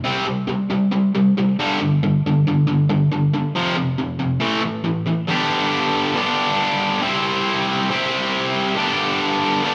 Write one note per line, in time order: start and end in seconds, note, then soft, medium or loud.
0.04 0.25 C3 medium
0.04 0.25 G3 medium
0.04 0.26 C4 medium
0.26 0.46 C3 medium
0.26 0.46 G3 medium
0.47 0.68 C3 medium
0.47 0.68 G3 medium
0.70 0.90 C3 medium
0.70 0.90 G3 medium
0.92 1.12 C3 medium
0.92 1.12 G3 medium
1.15 1.34 C3 medium
1.15 1.34 G3 medium
1.38 1.56 C3 medium
1.38 1.57 G3 medium
1.59 1.79 G2 medium
1.59 1.79 D3 medium
1.59 1.79 G3 loud
1.80 2.00 G2 medium
1.80 2.00 D3 medium
2.03 2.22 G2 medium
2.03 2.22 D3 medium
2.26 2.44 G2 medium
2.26 2.45 D3 medium
2.47 2.66 G2 medium
2.47 2.66 D3 medium
2.67 2.87 G2 medium
2.67 2.87 D3 medium
2.89 3.09 G2 medium
2.89 3.09 D3 medium
3.12 3.31 G2 medium
3.12 3.31 D3 medium
3.33 3.52 G2 medium
3.33 3.53 D3 medium
3.55 3.75 F2 medium
3.55 3.75 C3 medium
3.55 3.75 F3 medium
3.76 3.95 F2 medium
3.76 3.96 C3 medium
3.98 4.18 F2 medium
3.98 4.18 C3 medium
4.19 4.39 F2 medium
4.19 4.39 C3 medium
4.40 4.61 A2 medium
4.40 4.61 E3 medium
4.40 4.62 A3 loud
4.62 4.82 A2 medium
4.62 4.82 E3 medium
4.84 5.04 A2 medium
4.84 5.04 E3 medium
5.06 5.26 A2 medium
5.06 5.26 E3 medium
5.27 6.13 G2 medium
5.27 6.14 D3 medium
5.27 6.15 G3 medium
5.27 6.15 B3 medium
5.27 6.15 D4 medium
5.27 6.17 G4 medium
6.14 7.01 G2 medium
6.14 7.01 D3 medium
6.14 7.02 G3 medium
6.14 7.02 B3 medium
6.14 7.02 D4 medium
6.14 7.04 G4 medium
7.01 7.88 C3 medium
7.01 7.88 G3 medium
7.01 7.88 C4 medium
7.01 7.89 E4 medium
7.01 7.89 G4 medium
7.01 7.89 C5 medium
7.90 8.76 C3 medium
7.90 8.76 G3 medium
7.90 8.76 C4 medium
7.90 8.76 E4 medium
7.90 8.77 G4 medium
7.90 8.77 C5 medium
8.76 9.62 G2 medium
8.76 9.63 D3 medium
8.76 9.63 G3 medium
8.76 9.64 B3 medium
8.76 9.65 D4 medium
8.76 9.64 G4 medium
9.63 9.74 G2 medium
9.63 9.74 D3 medium
9.63 9.74 G3 medium
9.63 9.74 B3 medium
9.63 9.74 D4 medium
9.63 9.74 G4 medium